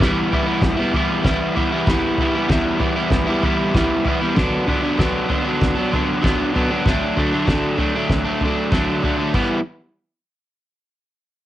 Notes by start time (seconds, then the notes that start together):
0.00 E3 G3 B3 E4, kick, snare, floor tom
0.31 E3 G3 B3 E4, floor tom
0.46 G3 B3 E4
0.61 kick, snare, floor tom
0.77 G3 B3 E4
0.93 E3 G3 B3 E4, floor tom
1.24 E3 G3 B3 E4, kick, snare, floor tom
1.55 E3 G3 B3 E4, floor tom
1.72 G3 B3 E4
1.87 E3 G3 B3 E4, kick, snare, floor tom
2.18 E3 G3 B3, floor tom
2.22 E4
2.35 G3 B3 E4
2.48 E3 G3 B3 E4, kick, snare, floor tom
2.78 E3 G3 B3 E4, floor tom
2.96 G3 B3 E4
3.10 kick, snare, floor tom
3.27 G3 B3 E4
3.43 E3 G3 B3 E4, floor tom
3.74 E3 G3 B3 E4, kick, snare, floor tom
4.05 E3 G3 B3 E4, floor tom
4.21 G3 B3 E4
4.35 D3 F#3 B3 D4, kick, snare, floor tom
4.67 D3 F#3 B3 D4, floor tom
4.83 F#3 B3 D4
4.97 D3 F#3 B3 D4, kick, snare, floor tom
5.29 D3 F#3 B3 D4, floor tom
5.44 F#3 B3 D4
5.61 kick, snare, floor tom
5.76 F#3 B3 D4
5.92 D3 F#3 B3 D4, floor tom
6.22 D3 F#3 B3 D4, kick, floor tom
6.26 snare
6.54 D3 F#3 B3 D4, floor tom
6.70 F#3 B3 D4
6.85 D3 F#3 A3, kick, snare, floor tom
6.89 D4
7.16 D3 F#3 A3 D4, floor tom
7.33 F#3 A3 D4
7.46 D3 F#3 A3, kick, snare, floor tom
7.50 D4
7.78 D3 F#3 A3 D4, floor tom
7.96 F#3 A3 D4
8.09 kick, snare, floor tom
8.25 F#3 A3 D4
8.41 D3 F#3, floor tom
8.45 A3 D4
8.72 D3 F#3 A3 D4, kick, snare, floor tom
9.02 D3 F#3 A3 D4, floor tom
9.18 F#3 A3 D4
9.34 E3 G3 B3 E4, kick, crash